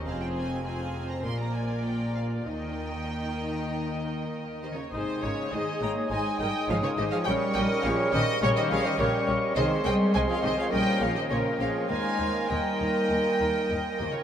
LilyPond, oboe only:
\new Staff \with { instrumentName = "Oboe" } { \time 4/4 \key aes \major \tempo 4 = 102 r1 | r1 | ees'''4 ees'''4 ees'''2 | des'''2 des'''4 des'''4 |
c'''4 c'''4 bes''4 bes''4 | bes''4 bes''2~ bes''8 r8 | }